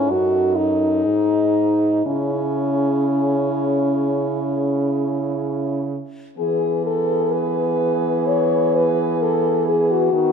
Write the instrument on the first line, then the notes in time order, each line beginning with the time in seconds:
french horn
Already playing: G#2 C#4 E4
0.10 F#2 D#4 F#4 A4
0.57 D#4
1.05 G#2 D#4 G#4
2.05 C#3 C#4 E4 G#4
6.38 E3 B3 G#4
6.87 A4
7.33 B4
8.27 C#5
8.76 B4
9.23 A4
9.68 G#4
9.91 F#4
10.12 D#3 B3 F#4